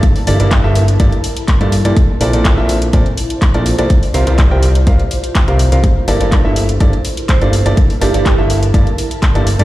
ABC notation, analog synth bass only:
X:1
M:4/4
L:1/16
Q:1/4=124
K:Gdor
V:1 name="Analog synth bass" clef=bass
z2 G,,, G,,,2 G,,,3 G,,, z4 G,,2 G,, | z2 B,,, B,,,2 B,,,3 B,,, z4 B,,,2 B,,, | z2 C,, C,,2 C,,3 C,, z4 C,,2 C,, | z2 G,,, G,,,2 G,,,3 G,,, z4 G,,,2 G,,, |
z2 G,,, G,,,2 G,,,3 G,,, z4 G,,,2 G,, |]